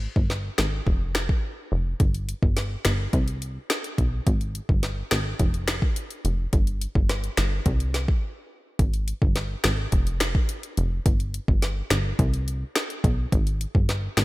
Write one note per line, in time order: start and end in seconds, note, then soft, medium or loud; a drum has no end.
0.16 0.50 G1 medium
0.16 kick medium
0.30 snare medium
0.58 0.81 G#1 medium
0.58 finger snap medium
0.58 snare loud
0.87 1.32 F1 loud
0.87 kick medium
1.15 finger snap medium
1.15 snare loud
1.29 kick medium
1.72 1.94 F1 loud
2.00 2.34 G1 loud
2.00 kick loud
2.00 closed hi-hat medium
2.14 closed hi-hat soft
2.29 closed hi-hat medium
2.43 2.77 G1 medium
2.43 kick medium
2.57 snare medium
2.57 closed hi-hat medium
2.85 3.08 G1 loud
2.85 finger snap loud
2.85 snare loud
2.85 closed hi-hat medium
3.13 3.58 C2 loud
3.13 kick medium
3.13 closed hi-hat medium
3.28 closed hi-hat soft
3.42 closed hi-hat medium
3.70 finger snap medium
3.70 snare loud
3.70 closed hi-hat medium
3.84 closed hi-hat medium
3.98 4.21 B1 medium
3.98 kick medium
3.98 closed hi-hat medium
4.27 4.61 G#1 loud
4.27 kick loud
4.27 closed hi-hat medium
4.41 closed hi-hat soft
4.55 closed hi-hat medium
4.69 5.03 G1 medium
4.69 kick medium
4.83 snare medium
4.83 closed hi-hat medium
5.11 5.34 G#1 medium
5.11 finger snap medium
5.11 snare loud
5.11 closed hi-hat medium
5.39 5.85 F1 loud
5.39 kick medium
5.39 closed hi-hat medium
5.54 closed hi-hat soft
5.68 finger snap medium
5.68 snare loud
5.68 closed hi-hat medium
5.82 kick medium
5.96 closed hi-hat medium
6.11 closed hi-hat medium
6.25 6.47 F1 loud
6.25 closed hi-hat medium
6.53 6.87 G1 loud
6.53 kick loud
6.53 closed hi-hat medium
6.67 closed hi-hat soft
6.81 closed hi-hat medium
6.95 7.29 G1 medium
6.95 kick medium
7.09 cross-stick medium
7.09 snare medium
7.09 closed hi-hat medium
7.24 closed hi-hat soft
7.37 7.60 G1 loud
7.37 finger snap medium
7.37 snare loud
7.37 closed hi-hat medium
7.66 8.11 C2 loud
7.66 kick medium
7.66 closed hi-hat medium
7.80 closed hi-hat soft
7.94 snare medium
7.94 closed hi-hat medium
8.08 kick loud
8.79 9.13 G#1 loud
8.79 kick loud
8.79 closed hi-hat medium
8.94 closed hi-hat soft
9.08 closed hi-hat medium
9.22 9.56 G1 loud
9.22 kick medium
9.36 snare medium
9.36 closed hi-hat medium
9.64 9.87 G#1 medium
9.64 finger snap medium
9.64 snare loud
9.64 closed hi-hat medium
9.92 10.38 F1 loud
9.92 kick medium
9.92 closed hi-hat medium
10.07 closed hi-hat soft
10.20 finger snap medium
10.20 snare loud
10.20 closed hi-hat medium
10.35 kick loud
10.49 closed hi-hat medium
10.63 closed hi-hat medium
10.77 11.00 F1 loud
10.77 closed hi-hat medium
11.06 11.40 G1 loud
11.06 kick loud
11.06 closed hi-hat medium
11.20 closed hi-hat soft
11.34 closed hi-hat medium
11.48 11.82 G1 medium
11.48 kick medium
11.62 snare medium
11.62 closed hi-hat medium
11.90 12.13 G1 loud
11.90 finger snap loud
11.90 snare loud
11.90 closed hi-hat medium
12.19 12.64 C2 loud
12.19 kick medium
12.19 closed hi-hat medium
12.34 closed hi-hat soft
12.48 closed hi-hat medium
12.76 finger snap medium
12.76 snare loud
12.76 closed hi-hat medium
12.90 closed hi-hat medium
13.04 13.27 B1 medium
13.04 kick loud
13.04 closed hi-hat medium
13.32 13.66 G#1 loud
13.32 kick loud
13.32 closed hi-hat medium
13.47 closed hi-hat soft
13.61 closed hi-hat medium
13.75 14.09 G1 medium
13.75 kick medium
13.89 snare medium
13.89 closed hi-hat medium
14.17 14.25 G#1 medium
14.17 finger snap loud
14.17 snare loud
14.17 closed hi-hat medium